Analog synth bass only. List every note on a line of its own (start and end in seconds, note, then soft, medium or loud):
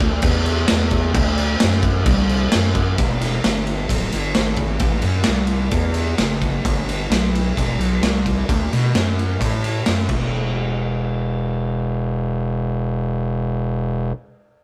0.00 0.22 D2 loud
0.23 0.65 E2 loud
0.71 1.13 E2 loud
1.13 1.56 D2 loud
1.63 2.04 F#2 loud
2.06 2.48 C2 medium
2.55 2.96 F#2 loud
2.98 3.40 E1 medium
3.45 3.86 G1 medium
3.90 4.10 D1 loud
4.13 4.34 G1 medium
4.36 4.78 G#1 loud
4.80 5.01 A1 medium
5.03 5.24 F#2 medium
5.28 5.69 C2 medium
5.72 6.15 E2 loud
6.19 6.61 F#1 loud
6.65 7.07 G1 medium
7.10 7.52 B1 medium
7.58 7.77 E1 loud
7.78 8.00 B1 medium
8.02 8.45 C2 loud
8.49 8.70 D2 medium
8.73 8.93 B2 medium
8.95 9.37 F#2 medium
9.40 9.83 A2 loud
9.88 10.08 F#2 medium
10.09 14.12 E1 loud